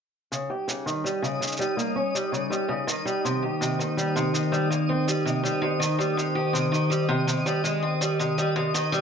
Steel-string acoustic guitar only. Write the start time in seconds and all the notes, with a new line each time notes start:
0.32 C#3
0.50 G4
0.68 C#3
0.86 D#3
1.04 G3
1.22 C#3
1.41 C#3
1.59 G3
1.77 A#3
1.96 C#4
2.15 G3
2.32 C#3
2.50 G3
2.69 C#3
2.87 D#3
3.05 G3
3.25 C3
3.42 G4
3.61 C3
3.79 D#3
3.97 G3
4.16 C3
4.34 C3
4.52 G3
4.70 A#3
4.89 C4
5.08 G3
5.25 C3
5.43 G3
5.62 C3
5.80 D#3
5.99 G3
6.17 C3
6.35 G4
6.53 C3
6.72 D#3
6.90 G3
7.09 C3
7.27 C3
7.46 G3
7.64 G#3
7.83 C4
8.01 G3
8.19 C3
8.38 G3
8.56 C3
8.74 D#3
8.92 G3